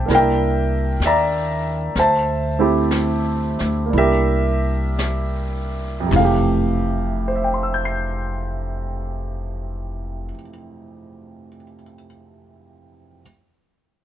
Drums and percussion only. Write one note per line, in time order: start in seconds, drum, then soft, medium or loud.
0.10 brush sweep soft
0.10 snare soft
1.02 snare soft
1.02 hi-hat pedal soft
1.95 brush sweep soft
1.95 snare soft
2.91 snare soft
2.91 hi-hat pedal soft
3.59 snare soft
3.93 brush sweep soft
4.99 snare soft
4.99 hi-hat pedal soft
6.11 kick medium
6.11 floor tom medium
6.11 open hi-hat medium